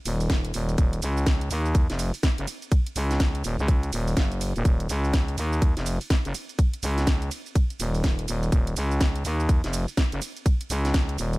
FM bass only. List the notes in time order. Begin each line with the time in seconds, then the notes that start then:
0.06 D#1
0.54 D#1
0.78 D#1
1.02 C#2
1.51 D#2
1.90 F1
2.38 F#1
2.96 C#2
3.44 D#1
3.59 C#2
3.93 D#1
4.17 F#1
4.56 D#1
4.65 D#1
4.89 C#2
5.38 D#2
5.77 F1
6.25 F#1
6.83 C#2
7.80 D#1
8.28 D#1
8.52 D#1
8.77 C#2
9.25 D#2
9.64 F1
10.12 F#1
10.70 C#2
11.18 D#1